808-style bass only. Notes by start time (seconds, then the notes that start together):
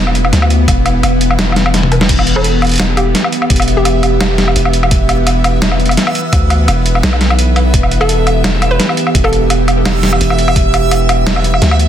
Already playing: E1
0.33 D2
0.68 E1
1.03 E1
2.09 E1
3.50 E1
4.56 E1
4.91 E1
6.33 D2
6.68 E1
7.04 B1
7.74 E1
9.15 E1
10.21 E1
10.56 E1
11.62 D2